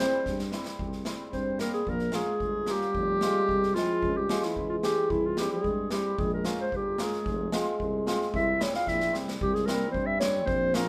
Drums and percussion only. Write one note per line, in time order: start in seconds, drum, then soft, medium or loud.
0.26 kick medium
0.26 snare soft
0.39 snare medium
0.52 snare medium
0.65 snare medium
0.79 kick medium
0.92 snare soft
1.05 snare medium
1.33 kick soft
1.33 snare soft
1.59 snare medium
1.73 snare soft
1.87 kick medium
1.99 snare soft
2.12 snare medium
2.40 kick medium
2.66 snare medium
2.81 snare soft
2.95 kick medium
3.21 snare medium
3.49 kick medium
3.63 snare soft
3.76 snare medium
4.02 kick medium
4.29 snare loud
4.42 snare medium
4.56 kick medium
4.83 snare medium
5.10 kick medium
5.37 snare medium
5.64 kick medium
5.91 snare medium
6.18 kick medium
6.45 snare medium
6.72 kick medium
6.98 snare medium
7.12 snare soft
7.26 kick medium
7.52 snare medium
7.80 kick medium
8.07 snare medium
8.22 snare soft
8.34 kick medium
8.61 snare loud
8.74 snare medium
8.87 kick medium
8.87 snare soft
9.00 snare medium
9.14 snare medium
9.28 snare medium
9.41 kick medium
9.55 snare soft
9.68 snare loud
9.94 kick medium
10.21 snare loud
10.47 kick medium
10.74 snare loud